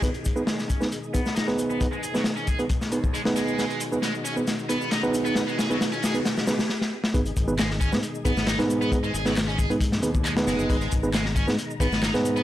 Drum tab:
HH |xxx-x-x-x-x-x-x-|x-x-xxxxx-x-x-x-|xxx-x-x-x-x-x-x-|x-x-xxxxx-x-----|
SH |xxxxxxxxxxxxxxxx|xxxxxxxxxxxxxxxx|xxxxxxxxxxxxxxxx|xxxxxxxxxxxx----|
CP |----------------|----------------|----------------|----------------|
SD |----oo-o---ooo--|---oo----o---oo-|o---o---o---o---|o-o-o-o-oooooo-o|
BD |o-o---o---o-----|o-----o-o--o----|----------------|----------------|

HH |xxx-x-x-x-x-x-x-|x-x-xxxxx-x-x-x-|xxx-x-x-x-x-x-x-|
SH |xxxxx-xxxxxxxxxx|xxxxx-xxxxxxxxxx|xxxxx-xxxxxxxxxx|
CP |----x-------x---|----x-------x---|----x-------x---|
SD |----oo-o---ooo--|---oo----o---oo-|----oo-o---ooo--|
BD |o-o---o---o-----|o-----o-o--o----|o-o---o---o-----|